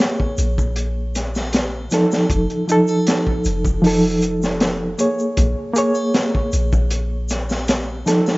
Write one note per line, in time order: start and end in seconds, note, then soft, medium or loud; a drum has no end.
0.00 1.86 A#3 medium
0.00 1.87 G#4 medium
0.00 1.88 C#5 medium
0.00 snare medium
0.20 kick medium
0.38 1.88 A#1 medium
0.38 closed hi-hat medium
0.38 shaker medium
0.58 kick medium
0.58 shaker soft
0.76 closed hi-hat medium
0.76 shaker soft
1.15 snare soft
1.15 closed hi-hat medium
1.15 shaker medium
1.35 snare soft
1.35 triangle medium
1.35 shaker medium
1.53 snare loud
1.53 closed hi-hat medium
1.53 shaker soft
1.91 2.64 F3 medium
1.91 2.64 D#4 medium
1.91 2.65 A4 medium
1.91 snare soft
1.91 closed hi-hat medium
1.91 shaker medium
2.12 snare medium
2.12 triangle medium
2.12 shaker soft
2.29 2.47 F1 medium
2.29 kick loud
2.29 closed hi-hat medium
2.29 shaker soft
2.50 closed hi-hat soft
2.67 3.79 F3 medium
2.67 3.80 D#4 medium
2.67 closed hi-hat medium
2.67 shaker medium
2.72 3.81 A4 loud
2.87 triangle medium
2.87 shaker medium
3.07 snare loud
3.07 closed hi-hat medium
3.07 shaker soft
3.27 kick medium
3.45 4.95 F1 medium
3.45 closed hi-hat medium
3.45 shaker loud
3.65 kick medium
3.65 shaker medium
3.82 4.93 F3 medium
3.82 4.95 D#4 medium
3.82 open hi-hat medium
3.82 shaker soft
3.87 4.96 A4 medium
4.22 closed hi-hat medium
4.22 shaker medium
4.42 snare soft
4.42 shaker soft
4.60 snare loud
4.60 closed hi-hat medium
4.60 shaker soft
4.98 5.71 A#3 medium
4.98 5.72 G#4 medium
4.98 5.72 C#5 medium
4.98 closed hi-hat medium
4.98 shaker medium
5.19 shaker medium
5.37 5.55 A#1 medium
5.37 kick loud
5.37 closed hi-hat medium
5.37 shaker soft
5.74 8.01 A#3 medium
5.74 8.02 G#4 medium
5.74 closed hi-hat medium
5.74 shaker loud
5.78 8.03 C#5 loud
5.95 triangle medium
5.95 shaker medium
6.14 snare loud
6.14 closed hi-hat medium
6.14 shaker soft
6.35 kick medium
6.52 8.03 A#1 loud
6.52 closed hi-hat medium
6.52 shaker medium
6.72 kick medium
6.72 shaker soft
6.90 closed hi-hat medium
6.90 shaker soft
7.29 snare soft
7.29 closed hi-hat medium
7.29 shaker medium
7.49 snare soft
7.49 triangle medium
7.49 shaker soft
7.67 snare loud
7.67 closed hi-hat medium
7.67 shaker soft
8.06 8.38 F3 medium
8.06 8.38 D#4 medium
8.06 8.38 A4 medium
8.06 snare soft
8.06 closed hi-hat medium
8.06 shaker medium
8.26 snare medium
8.26 triangle medium
8.26 shaker medium